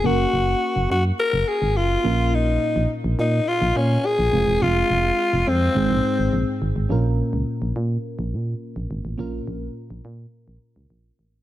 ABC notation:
X:1
M:4/4
L:1/16
Q:1/4=105
K:Bbm
V:1 name="Alto saxophone"
G6 G2 B2 A2 F4 | E4 z2 E2 F2 D2 A4 | F6 C8 z2 | z16 |
z16 |]
V:2 name="FM electric piano"
[B,DGB]12- [B,DGB]2 [B,DFB]2- | [B,DFB]12- [B,DFB]2 [A,CFA]2- | [A,CFA]8 [A,CEA]8 | [B,DFB]16 |
[B,DFB]16 |]
V:3 name="FM electric piano" clef=bass
z12 z2 B,,2- | B,,4 z12 | z8 A,,6 z2 | B,,6 z8 z2 |
B,,6 z8 z2 |]
V:4 name="FM bass" clef=bass
G,,,2 G,,,2 z G,,, G,,2 z G,,, z A,,, G,,,2 B,,,2- | B,,,3 B,,, z B,,, B,,2 z B,,, B,,2 z B,,, F,,, =E,,, | F,,,2 F,,,2 z F,,, F,,2 A,,, B,,, z A,,, B,,, z A,,, A,,, | B,,,3 D,, z B,,, B,,2 z B,,, B,,2 z B,,, A,,, =A,,, |
B,,,2 B,,,2 z B,,, B,,2 z B,,, z D,, B,,,2 =A,,,2 |]